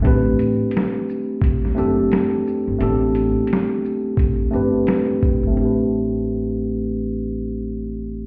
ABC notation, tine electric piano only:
X:1
M:4/4
L:1/8
Q:"Swing 16ths" 1/4=87
K:Am
V:1 name="Tine electric piano"
[A,CDGB]3 z2 [A,CDGA]2 z | [A,B,CDGA]3 z2 [A,CDGB]2 z | [A,CDGB]8 |]